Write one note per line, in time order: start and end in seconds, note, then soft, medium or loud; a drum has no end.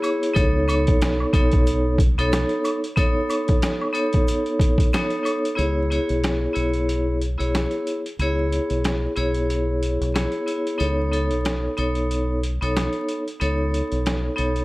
0.02 0.32 B3 medium
0.02 0.34 E4 medium
0.02 0.34 G#4 medium
0.02 0.34 C#5 medium
0.02 closed hi-hat medium
0.02 high woodblock medium
0.02 shaker soft
0.23 closed hi-hat medium
0.34 0.88 C#2 loud
0.34 0.65 B3 loud
0.34 0.66 D#4 medium
0.34 0.66 A4 medium
0.34 0.66 C#5 loud
0.34 kick loud
0.34 closed hi-hat medium
0.34 shaker medium
0.68 1.29 B3 medium
0.68 1.29 D#4 medium
0.68 1.30 A4 medium
0.68 1.30 C#5 loud
0.68 closed hi-hat medium
0.68 high woodblock medium
0.68 shaker medium
0.87 1.23 B1 medium
0.87 kick medium
0.87 closed hi-hat medium
1.01 snare loud
1.01 closed hi-hat loud
1.01 shaker medium
1.20 high woodblock medium
1.33 2.14 B1 medium
1.33 1.94 B3 medium
1.33 1.95 D#4 medium
1.33 1.95 A4 medium
1.33 1.95 C#5 loud
1.33 kick loud
1.33 closed hi-hat medium
1.33 shaker soft
1.51 kick medium
1.51 closed hi-hat medium
1.67 closed hi-hat medium
1.67 shaker medium
1.98 kick medium
1.98 closed hi-hat medium
1.98 shaker medium
2.18 2.43 B1 medium
2.18 2.77 B3 loud
2.18 2.78 D#4 medium
2.18 2.78 A4 medium
2.18 2.78 C#5 loud
2.18 closed hi-hat medium
2.32 snare loud
2.32 closed hi-hat loud
2.32 shaker medium
2.49 closed hi-hat soft
2.64 closed hi-hat medium
2.64 high woodblock medium
2.64 shaker soft
2.84 closed hi-hat medium
2.96 3.88 B3 loud
2.96 3.88 D#4 medium
2.96 3.88 A4 medium
2.96 3.89 C#5 loud
2.96 kick loud
2.96 closed hi-hat medium
2.96 shaker medium
3.30 closed hi-hat medium
3.30 high woodblock medium
3.30 shaker medium
3.48 kick medium
3.48 closed hi-hat soft
3.62 snare loud
3.62 closed hi-hat loud
3.62 shaker medium
3.81 high woodblock medium
3.93 4.85 B3 loud
3.93 4.85 D#4 medium
3.93 4.86 A4 medium
3.93 4.86 C#5 loud
3.93 closed hi-hat medium
3.93 shaker soft
4.13 kick medium
4.13 closed hi-hat medium
4.28 closed hi-hat medium
4.28 shaker medium
4.46 closed hi-hat soft
4.59 kick medium
4.59 closed hi-hat medium
4.59 shaker medium
4.78 kick medium
4.78 closed hi-hat medium
4.93 5.22 B3 medium
4.93 5.23 D#4 medium
4.93 5.23 A4 medium
4.93 5.24 C#5 medium
4.93 snare loud
4.93 closed hi-hat medium
4.93 shaker medium
5.10 closed hi-hat soft
5.23 5.54 B3 medium
5.23 5.55 D#4 medium
5.23 5.55 A4 medium
5.23 5.56 C#5 medium
5.23 closed hi-hat medium
5.23 high woodblock medium
5.23 shaker soft
5.45 closed hi-hat medium
5.56 5.97 C#2 loud
5.56 5.87 B3 loud
5.56 5.88 E4 medium
5.56 5.88 G#4 medium
5.56 5.88 C#5 loud
5.56 closed hi-hat medium
5.90 6.51 B3 medium
5.90 6.52 E4 medium
5.90 6.52 G#4 medium
5.90 6.52 C#5 medium
5.90 closed hi-hat medium
6.09 6.45 B1 medium
6.09 closed hi-hat soft
6.24 snare loud
6.24 closed hi-hat medium
6.53 7.36 B1 medium
6.53 7.15 B3 medium
6.53 7.16 E4 medium
6.53 7.16 G#4 medium
6.53 7.16 C#5 loud
6.53 closed hi-hat medium
6.73 closed hi-hat soft
6.89 closed hi-hat medium
7.22 closed hi-hat medium
7.38 7.65 B1 medium
7.38 7.98 B3 medium
7.38 7.98 E4 medium
7.38 7.99 G#4 medium
7.38 7.99 C#5 loud
7.38 closed hi-hat medium
7.55 snare loud
7.55 snare medium
7.55 closed hi-hat medium
7.71 closed hi-hat soft
7.87 closed hi-hat medium
8.06 closed hi-hat medium
8.19 8.58 C#2 medium
8.19 9.10 B3 loud
8.19 9.11 E4 medium
8.19 9.11 G#4 medium
8.19 9.11 C#5 loud
8.19 closed hi-hat medium
8.52 closed hi-hat medium
8.70 9.06 B1 medium
8.70 closed hi-hat soft
8.84 snare loud
8.84 closed hi-hat medium
9.16 9.97 B1 medium
9.16 10.07 B3 medium
9.16 10.08 E4 medium
9.16 10.08 G#4 medium
9.16 10.08 C#5 loud
9.16 closed hi-hat medium
9.34 closed hi-hat medium
9.50 closed hi-hat medium
9.83 closed hi-hat medium
10.01 10.26 B1 medium
10.01 closed hi-hat medium
10.14 10.45 B3 medium
10.14 10.45 E4 medium
10.14 10.46 G#4 medium
10.14 10.46 C#5 medium
10.14 snare loud
10.14 snare medium
10.14 closed hi-hat medium
10.32 closed hi-hat soft
10.46 10.77 B3 medium
10.46 10.77 E4 medium
10.46 10.78 G#4 medium
10.46 10.78 C#5 medium
10.46 closed hi-hat medium
10.67 closed hi-hat medium
10.78 11.31 C#2 loud
10.78 11.09 B3 medium
10.78 11.10 D#4 medium
10.78 11.10 A4 medium
10.78 11.10 C#5 loud
10.78 closed hi-hat medium
11.12 11.73 B3 medium
11.12 11.73 D#4 medium
11.12 11.73 A4 medium
11.12 11.74 C#5 loud
11.12 closed hi-hat medium
11.31 11.67 B1 medium
11.31 closed hi-hat soft
11.45 snare loud
11.45 closed hi-hat medium
11.77 12.58 B1 medium
11.77 12.38 B3 medium
11.77 12.38 D#4 medium
11.77 12.39 A4 medium
11.77 12.39 C#5 loud
11.77 closed hi-hat medium
11.95 closed hi-hat soft
12.11 closed hi-hat medium
12.43 closed hi-hat medium
12.61 12.87 B1 medium
12.61 13.21 B3 medium
12.61 13.21 D#4 medium
12.61 13.21 A4 medium
12.61 13.22 C#5 loud
12.61 closed hi-hat medium
12.77 snare loud
12.77 snare medium
12.77 closed hi-hat medium
12.93 closed hi-hat soft
13.09 closed hi-hat medium
13.28 closed hi-hat medium
13.40 13.80 C#2 loud
13.40 14.31 B3 medium
13.40 14.32 D#4 medium
13.40 14.32 A4 medium
13.40 14.32 C#5 loud
13.40 closed hi-hat medium
13.74 closed hi-hat medium
13.92 14.28 B1 medium
13.92 closed hi-hat soft
14.06 snare loud
14.06 snare medium
14.06 closed hi-hat medium
14.36 14.65 B1 medium
14.36 14.65 B3 loud
14.36 14.65 D#4 medium
14.36 14.65 A4 medium
14.36 14.65 C#5 loud
14.36 closed hi-hat medium
14.56 closed hi-hat medium